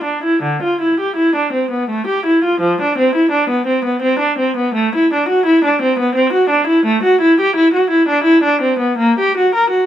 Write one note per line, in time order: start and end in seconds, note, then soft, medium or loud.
0.04 0.23 D4 soft
0.24 0.43 E4 soft
0.42 0.61 D3 soft
0.63 0.81 F4 medium
0.81 0.99 E4 soft
1.00 1.17 G4 soft
1.16 1.34 E4 medium
1.36 1.53 D4 medium
1.53 1.71 C4 soft
1.71 1.89 B3 soft
1.90 2.07 A3 medium
2.07 2.25 G4 medium
2.26 2.43 E4 soft
2.44 2.61 F4 medium
2.61 2.78 F3 medium
2.82 2.98 D4 medium
2.98 3.15 C4 medium
3.15 3.32 E4 medium
3.31 3.49 D4 medium
3.50 3.67 B3 medium
3.67 3.84 C4 medium
3.85 4.02 B3 soft
4.02 4.20 C4 medium
4.19 4.37 D4 medium
4.38 4.56 C4 medium
4.57 4.75 B3 medium
4.74 4.93 A3 medium
4.95 5.12 E4 medium
5.14 5.30 D4 medium
5.29 5.46 F#4 medium
5.46 5.63 E4 medium
5.64 5.81 D4 medium
5.82 5.98 C4 medium
5.99 6.15 B3 medium
6.15 6.32 C4 medium
6.33 6.50 F#4 medium
6.50 6.67 D4 medium
6.67 6.84 E4 medium
6.86 7.02 A3 medium
7.03 7.20 F#4 medium
7.21 7.37 E4 medium
7.40 7.55 G4 medium
7.56 7.72 E4 medium
7.74 7.90 F#4 medium
7.90 8.07 E4 medium
8.09 8.25 D4 medium
8.24 8.42 E4 medium
8.44 8.61 D4 medium
8.62 8.80 C4 medium
8.79 8.98 B3 medium
8.98 9.17 A#3 medium
9.19 9.37 G4 medium
9.37 9.55 F#4 medium
9.55 9.73 A#4 medium
9.70 9.86 F#4 medium